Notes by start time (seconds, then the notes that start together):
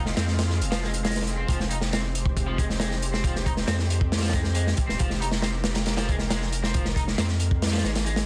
Already playing: F1 G#3 C4 F4 F5
0.06 snare
0.17 F2 C4, snare, closed hi-hat
0.28 snare
0.39 snare, closed hi-hat
0.50 snare
0.60 F1, closed hi-hat
0.72 F3, snare, closed hi-hat
0.83 G#3, snare
0.94 closed hi-hat
1.05 G#3, snare, closed hi-hat
1.10 snare, closed hi-hat
1.16 snare, closed hi-hat
1.21 snare, closed hi-hat
1.27 closed hi-hat
1.37 C4
1.48 F1 F3 G4 C5, kick, closed hi-hat
1.60 snare
1.71 D#4, closed hi-hat
1.81 snare
1.93 C4, snare, closed hi-hat
2.15 closed hi-hat
2.26 kick
2.37 kick, closed hi-hat
2.47 F3
2.58 G#3, kick, closed hi-hat
2.70 snare
2.80 G#3, snare, closed hi-hat
2.91 snare
3.02 closed hi-hat
3.13 C4, snare
3.24 F3, kick, closed hi-hat
3.36 snare
3.46 D#4, kick, closed hi-hat
3.57 snare
3.67 F2 C4, snare, closed hi-hat
3.79 snare
3.90 closed hi-hat
4.01 kick
4.12 snare, closed hi-hat
4.18 snare, closed hi-hat
4.22 F3, snare, closed hi-hat
4.28 snare, closed hi-hat
4.33 G#3, kick, closed hi-hat
4.44 snare
4.55 G#3, closed hi-hat
4.67 snare
4.77 kick, closed hi-hat
4.88 D#1 C4, snare
4.99 F1 F3 A#4, kick, closed hi-hat
5.10 snare
5.21 D#4, closed hi-hat
5.32 snare
5.42 C4, snare, closed hi-hat
5.64 snare, closed hi-hat
5.75 snare, closed hi-hat
5.86 snare, closed hi-hat
5.97 F3, snare, closed hi-hat
6.09 G#3, kick, closed hi-hat
6.19 snare
6.30 G#3, snare, closed hi-hat
6.42 snare
6.52 closed hi-hat
6.64 C4, snare
6.74 F3, kick, closed hi-hat
6.85 snare
6.96 D#4, kick, closed hi-hat
7.08 snare
7.18 F2 C4, snare, closed hi-hat
7.28 snare
7.40 closed hi-hat
7.51 kick
7.62 snare, closed hi-hat
7.67 snare, closed hi-hat
7.73 F3, snare, closed hi-hat
7.78 snare, closed hi-hat
7.83 G#1 G#3, snare, closed hi-hat
7.95 snare, closed hi-hat
8.06 G#3, closed hi-hat
8.16 snare, closed hi-hat